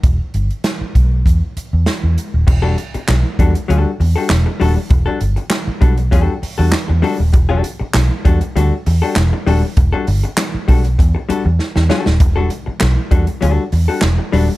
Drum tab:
CC |----------------|x---------------|----------------|----------------|
HH |x-xxx-x-x-x-x-x-|--xxx-xxx-o-x-o-|x-xxx-xxx-o-x-o-|x-x-x-xxx-o-x-o-|
CP |----------------|----x-------x---|----x-------x---|----x-------x---|
SD |----o-------o---|----o-------o---|----o-------o---|----o-------o---|
BD |o-----o-o-------|o-----o---------|o-----o-o-------|o-----o---------|

CC |----------------|----------------|
HH |x-oxx-oxx-x-----|x-x-x-xxx-o-x-o-|
CP |----x-----------|----x-------x---|
SD |----o-------oooo|----o-------o---|
BD |o-----o-o-------|o-----o---------|